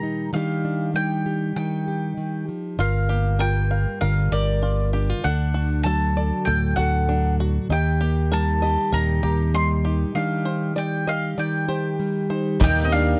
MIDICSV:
0, 0, Header, 1, 10, 480
1, 0, Start_track
1, 0, Tempo, 613497
1, 262, Time_signature, 4, 2, 24, 8
1, 10325, End_track
2, 0, Start_track
2, 0, Title_t, "Mandolin"
2, 0, Program_c, 0, 25
2, 0, Note_on_c, 0, 82, 93
2, 232, Note_off_c, 0, 82, 0
2, 264, Note_on_c, 0, 77, 71
2, 712, Note_off_c, 0, 77, 0
2, 749, Note_on_c, 0, 79, 73
2, 1214, Note_off_c, 0, 79, 0
2, 1224, Note_on_c, 0, 79, 66
2, 1912, Note_off_c, 0, 79, 0
2, 2192, Note_on_c, 0, 77, 72
2, 2659, Note_off_c, 0, 77, 0
2, 2663, Note_on_c, 0, 79, 80
2, 3112, Note_off_c, 0, 79, 0
2, 3137, Note_on_c, 0, 77, 77
2, 3381, Note_on_c, 0, 74, 64
2, 3388, Note_off_c, 0, 77, 0
2, 3832, Note_off_c, 0, 74, 0
2, 4102, Note_on_c, 0, 78, 78
2, 4562, Note_off_c, 0, 78, 0
2, 4565, Note_on_c, 0, 81, 80
2, 5044, Note_off_c, 0, 81, 0
2, 5047, Note_on_c, 0, 79, 80
2, 5279, Note_off_c, 0, 79, 0
2, 5289, Note_on_c, 0, 78, 72
2, 5747, Note_off_c, 0, 78, 0
2, 6043, Note_on_c, 0, 79, 73
2, 6517, Note_off_c, 0, 79, 0
2, 6520, Note_on_c, 0, 81, 81
2, 6990, Note_off_c, 0, 81, 0
2, 6993, Note_on_c, 0, 82, 81
2, 7465, Note_off_c, 0, 82, 0
2, 7469, Note_on_c, 0, 84, 90
2, 7938, Note_off_c, 0, 84, 0
2, 7941, Note_on_c, 0, 77, 76
2, 8394, Note_off_c, 0, 77, 0
2, 8434, Note_on_c, 0, 79, 69
2, 8672, Note_off_c, 0, 79, 0
2, 8675, Note_on_c, 0, 77, 73
2, 8912, Note_off_c, 0, 77, 0
2, 8915, Note_on_c, 0, 79, 66
2, 9600, Note_off_c, 0, 79, 0
2, 9887, Note_on_c, 0, 79, 110
2, 10050, Note_off_c, 0, 79, 0
2, 10051, Note_on_c, 0, 75, 76
2, 10106, Note_off_c, 0, 75, 0
2, 10111, Note_on_c, 0, 77, 94
2, 10325, Note_off_c, 0, 77, 0
2, 10325, End_track
3, 0, Start_track
3, 0, Title_t, "Five-string banjo"
3, 0, Program_c, 1, 105
3, 2181, Note_on_c, 1, 65, 73
3, 2419, Note_on_c, 1, 67, 64
3, 2654, Note_on_c, 1, 70, 68
3, 2901, Note_on_c, 1, 77, 65
3, 3130, Note_off_c, 1, 70, 0
3, 3139, Note_on_c, 1, 70, 70
3, 3143, Note_off_c, 1, 65, 0
3, 3371, Note_off_c, 1, 67, 0
3, 3380, Note_on_c, 1, 67, 65
3, 3619, Note_on_c, 1, 65, 66
3, 3849, Note_off_c, 1, 67, 0
3, 3859, Note_on_c, 1, 67, 63
3, 3863, Note_off_c, 1, 77, 0
3, 4099, Note_on_c, 1, 62, 69
3, 4102, Note_off_c, 1, 65, 0
3, 4102, Note_off_c, 1, 67, 0
3, 4103, Note_off_c, 1, 70, 0
3, 4337, Note_on_c, 1, 66, 65
3, 4587, Note_on_c, 1, 69, 73
3, 4826, Note_on_c, 1, 74, 68
3, 5054, Note_off_c, 1, 69, 0
3, 5063, Note_off_c, 1, 62, 0
3, 5063, Note_on_c, 1, 69, 71
3, 5288, Note_off_c, 1, 66, 0
3, 5297, Note_on_c, 1, 66, 64
3, 5546, Note_on_c, 1, 62, 65
3, 5781, Note_off_c, 1, 66, 0
3, 5787, Note_off_c, 1, 74, 0
3, 5791, Note_on_c, 1, 66, 62
3, 6022, Note_off_c, 1, 66, 0
3, 6025, Note_off_c, 1, 69, 0
3, 6025, Note_on_c, 1, 63, 74
3, 6027, Note_off_c, 1, 62, 0
3, 6264, Note_on_c, 1, 67, 69
3, 6507, Note_on_c, 1, 70, 70
3, 6745, Note_on_c, 1, 75, 70
3, 6973, Note_off_c, 1, 70, 0
3, 6982, Note_on_c, 1, 70, 74
3, 6987, Note_off_c, 1, 63, 0
3, 7212, Note_off_c, 1, 67, 0
3, 7222, Note_on_c, 1, 67, 72
3, 7467, Note_on_c, 1, 63, 68
3, 7695, Note_off_c, 1, 67, 0
3, 7705, Note_on_c, 1, 67, 65
3, 7708, Note_off_c, 1, 75, 0
3, 7946, Note_off_c, 1, 70, 0
3, 7947, Note_off_c, 1, 67, 0
3, 7948, Note_off_c, 1, 63, 0
3, 8179, Note_on_c, 1, 72, 65
3, 8418, Note_on_c, 1, 74, 70
3, 8665, Note_on_c, 1, 75, 69
3, 8893, Note_off_c, 1, 74, 0
3, 8902, Note_on_c, 1, 74, 69
3, 9133, Note_off_c, 1, 72, 0
3, 9142, Note_on_c, 1, 72, 66
3, 9614, Note_off_c, 1, 72, 0
3, 9621, Note_off_c, 1, 75, 0
3, 9624, Note_on_c, 1, 72, 63
3, 9864, Note_off_c, 1, 74, 0
3, 9864, Note_on_c, 1, 67, 91
3, 9865, Note_off_c, 1, 72, 0
3, 10325, Note_off_c, 1, 67, 0
3, 10325, End_track
4, 0, Start_track
4, 0, Title_t, "Hollow-body jazz guitar"
4, 0, Program_c, 2, 26
4, 9874, Note_on_c, 2, 63, 97
4, 10043, Note_off_c, 2, 63, 0
4, 10056, Note_on_c, 2, 60, 67
4, 10105, Note_off_c, 2, 60, 0
4, 10121, Note_on_c, 2, 62, 81
4, 10325, Note_off_c, 2, 62, 0
4, 10325, End_track
5, 0, Start_track
5, 0, Title_t, "Steel-string acoustic guitar"
5, 0, Program_c, 3, 25
5, 0, Note_on_c, 3, 46, 55
5, 0, Note_on_c, 3, 51, 62
5, 0, Note_on_c, 3, 55, 57
5, 0, Note_on_c, 3, 58, 51
5, 0, Note_on_c, 3, 67, 55
5, 24, Note_on_c, 3, 63, 50
5, 233, Note_off_c, 3, 46, 0
5, 233, Note_off_c, 3, 51, 0
5, 234, Note_off_c, 3, 63, 0
5, 256, Note_on_c, 3, 51, 65
5, 262, Note_off_c, 3, 55, 0
5, 265, Note_off_c, 3, 58, 0
5, 265, Note_on_c, 3, 55, 53
5, 270, Note_on_c, 3, 62, 53
5, 277, Note_on_c, 3, 63, 51
5, 279, Note_off_c, 3, 67, 0
5, 282, Note_on_c, 3, 67, 57
5, 504, Note_off_c, 3, 62, 0
5, 507, Note_on_c, 3, 62, 50
5, 732, Note_off_c, 3, 55, 0
5, 734, Note_off_c, 3, 63, 0
5, 735, Note_on_c, 3, 55, 55
5, 743, Note_on_c, 3, 63, 50
5, 982, Note_off_c, 3, 67, 0
5, 985, Note_on_c, 3, 67, 56
5, 1213, Note_off_c, 3, 51, 0
5, 1215, Note_off_c, 3, 63, 0
5, 1221, Note_on_c, 3, 51, 52
5, 1228, Note_on_c, 3, 63, 52
5, 1460, Note_off_c, 3, 67, 0
5, 1469, Note_on_c, 3, 67, 48
5, 1691, Note_off_c, 3, 51, 0
5, 1700, Note_on_c, 3, 51, 52
5, 1940, Note_off_c, 3, 55, 0
5, 1942, Note_off_c, 3, 51, 0
5, 1944, Note_on_c, 3, 53, 53
5, 2156, Note_off_c, 3, 63, 0
5, 2184, Note_off_c, 3, 53, 0
5, 2186, Note_off_c, 3, 67, 0
5, 2190, Note_on_c, 3, 43, 59
5, 2195, Note_on_c, 3, 70, 56
5, 2437, Note_off_c, 3, 62, 0
5, 2440, Note_on_c, 3, 58, 50
5, 2670, Note_on_c, 3, 55, 52
5, 2676, Note_on_c, 3, 65, 49
5, 2904, Note_off_c, 3, 70, 0
5, 2914, Note_on_c, 3, 70, 55
5, 3138, Note_off_c, 3, 65, 0
5, 3143, Note_on_c, 3, 50, 58
5, 3148, Note_on_c, 3, 65, 49
5, 3383, Note_off_c, 3, 70, 0
5, 3392, Note_on_c, 3, 70, 55
5, 3619, Note_off_c, 3, 55, 0
5, 3628, Note_on_c, 3, 55, 54
5, 3866, Note_off_c, 3, 65, 0
5, 3870, Note_on_c, 3, 62, 51
5, 3987, Note_off_c, 3, 62, 0
5, 3987, Note_on_c, 3, 65, 44
5, 4076, Note_off_c, 3, 50, 0
5, 4078, Note_off_c, 3, 55, 0
5, 4080, Note_off_c, 3, 70, 0
5, 4104, Note_on_c, 3, 50, 65
5, 4106, Note_off_c, 3, 65, 0
5, 4108, Note_on_c, 3, 69, 57
5, 4109, Note_off_c, 3, 43, 0
5, 4113, Note_off_c, 3, 58, 0
5, 4352, Note_on_c, 3, 62, 52
5, 4581, Note_on_c, 3, 54, 55
5, 4586, Note_on_c, 3, 66, 52
5, 4827, Note_off_c, 3, 69, 0
5, 4837, Note_on_c, 3, 69, 57
5, 5065, Note_off_c, 3, 66, 0
5, 5070, Note_on_c, 3, 45, 57
5, 5305, Note_off_c, 3, 69, 0
5, 5314, Note_on_c, 3, 69, 55
5, 5541, Note_off_c, 3, 54, 0
5, 5550, Note_on_c, 3, 54, 54
5, 5794, Note_on_c, 3, 66, 53
5, 5998, Note_off_c, 3, 50, 0
5, 6000, Note_off_c, 3, 45, 0
5, 6000, Note_off_c, 3, 54, 0
5, 6001, Note_off_c, 3, 62, 0
5, 6002, Note_off_c, 3, 66, 0
5, 6002, Note_off_c, 3, 69, 0
5, 6031, Note_on_c, 3, 51, 62
5, 6038, Note_on_c, 3, 67, 58
5, 6279, Note_on_c, 3, 58, 54
5, 6513, Note_on_c, 3, 55, 59
5, 6518, Note_on_c, 3, 63, 53
5, 6749, Note_off_c, 3, 67, 0
5, 6752, Note_on_c, 3, 67, 58
5, 6994, Note_on_c, 3, 46, 58
5, 7000, Note_off_c, 3, 63, 0
5, 7003, Note_on_c, 3, 63, 56
5, 7230, Note_off_c, 3, 67, 0
5, 7233, Note_on_c, 3, 67, 54
5, 7459, Note_off_c, 3, 55, 0
5, 7463, Note_on_c, 3, 55, 59
5, 7714, Note_off_c, 3, 63, 0
5, 7717, Note_on_c, 3, 63, 51
5, 7924, Note_off_c, 3, 46, 0
5, 7937, Note_off_c, 3, 51, 0
5, 7940, Note_on_c, 3, 51, 68
5, 7941, Note_off_c, 3, 55, 0
5, 7944, Note_on_c, 3, 55, 51
5, 7947, Note_off_c, 3, 58, 0
5, 7950, Note_off_c, 3, 63, 0
5, 7950, Note_on_c, 3, 62, 53
5, 7954, Note_on_c, 3, 63, 57
5, 7958, Note_off_c, 3, 67, 0
5, 7961, Note_on_c, 3, 67, 61
5, 8190, Note_off_c, 3, 62, 0
5, 8411, Note_off_c, 3, 55, 0
5, 8417, Note_off_c, 3, 63, 0
5, 8421, Note_on_c, 3, 55, 53
5, 8426, Note_on_c, 3, 63, 52
5, 8655, Note_off_c, 3, 67, 0
5, 8664, Note_on_c, 3, 67, 58
5, 8892, Note_off_c, 3, 51, 0
5, 8893, Note_off_c, 3, 63, 0
5, 8901, Note_on_c, 3, 51, 55
5, 8904, Note_on_c, 3, 63, 55
5, 9134, Note_off_c, 3, 67, 0
5, 9143, Note_on_c, 3, 67, 54
5, 9376, Note_off_c, 3, 55, 0
5, 9385, Note_on_c, 3, 55, 55
5, 9613, Note_off_c, 3, 63, 0
5, 9623, Note_on_c, 3, 63, 50
5, 9835, Note_off_c, 3, 51, 0
5, 9836, Note_off_c, 3, 63, 0
5, 9837, Note_off_c, 3, 55, 0
5, 10325, Note_off_c, 3, 67, 0
5, 10325, End_track
6, 0, Start_track
6, 0, Title_t, "Grand piano"
6, 0, Program_c, 4, 0
6, 9856, Note_on_c, 4, 55, 97
6, 9856, Note_on_c, 4, 58, 91
6, 9861, Note_on_c, 4, 39, 66
6, 9861, Note_on_c, 4, 51, 68
6, 9864, Note_on_c, 4, 63, 92
6, 9866, Note_on_c, 4, 70, 89
6, 9869, Note_on_c, 4, 75, 105
6, 9997, Control_c, 4, 64, 127
6, 10197, Note_off_c, 4, 55, 0
6, 10197, Note_off_c, 4, 58, 0
6, 10201, Note_off_c, 4, 63, 0
6, 10202, Note_off_c, 4, 70, 0
6, 10203, Note_off_c, 4, 75, 0
6, 10325, Note_off_c, 4, 39, 0
6, 10325, Note_off_c, 4, 51, 0
6, 10325, End_track
7, 0, Start_track
7, 0, Title_t, "Harmonium"
7, 0, Program_c, 5, 20
7, 9871, Note_on_c, 5, 58, 81
7, 9873, Note_on_c, 5, 67, 97
7, 9875, Note_on_c, 5, 51, 82
7, 10325, Note_off_c, 5, 51, 0
7, 10325, Note_off_c, 5, 58, 0
7, 10325, Note_off_c, 5, 67, 0
7, 10325, End_track
8, 0, Start_track
8, 0, Title_t, "Twelve-string acoustic guitar"
8, 0, Program_c, 6, 25
8, 9856, Note_on_c, 6, 51, 81
8, 9861, Note_on_c, 6, 55, 84
8, 9869, Note_on_c, 6, 58, 89
8, 9873, Note_on_c, 6, 67, 89
8, 10325, Note_off_c, 6, 51, 0
8, 10325, Note_off_c, 6, 55, 0
8, 10325, Note_off_c, 6, 58, 0
8, 10325, Note_off_c, 6, 67, 0
8, 10325, End_track
9, 0, Start_track
9, 0, Title_t, "Fingered electric bass"
9, 0, Program_c, 7, 33
9, 2180, Note_on_c, 7, 31, 78
9, 3009, Note_off_c, 7, 31, 0
9, 3144, Note_on_c, 7, 31, 74
9, 3351, Note_off_c, 7, 31, 0
9, 3379, Note_on_c, 7, 31, 85
9, 4002, Note_off_c, 7, 31, 0
9, 4104, Note_on_c, 7, 38, 78
9, 4932, Note_off_c, 7, 38, 0
9, 5066, Note_on_c, 7, 38, 79
9, 5273, Note_off_c, 7, 38, 0
9, 5301, Note_on_c, 7, 38, 84
9, 5924, Note_off_c, 7, 38, 0
9, 6020, Note_on_c, 7, 39, 86
9, 6850, Note_off_c, 7, 39, 0
9, 6983, Note_on_c, 7, 39, 81
9, 7192, Note_off_c, 7, 39, 0
9, 7227, Note_on_c, 7, 39, 88
9, 7848, Note_off_c, 7, 39, 0
9, 9866, Note_on_c, 7, 39, 99
9, 10279, Note_off_c, 7, 39, 0
9, 10325, End_track
10, 0, Start_track
10, 0, Title_t, "Drums"
10, 9867, Note_on_c, 9, 36, 117
10, 9867, Note_on_c, 9, 38, 38
10, 9867, Note_on_c, 9, 49, 120
10, 9945, Note_off_c, 9, 38, 0
10, 9945, Note_off_c, 9, 49, 0
10, 9946, Note_off_c, 9, 36, 0
10, 9990, Note_on_c, 9, 38, 34
10, 10068, Note_off_c, 9, 38, 0
10, 10108, Note_on_c, 9, 38, 37
10, 10186, Note_off_c, 9, 38, 0
10, 10325, End_track
0, 0, End_of_file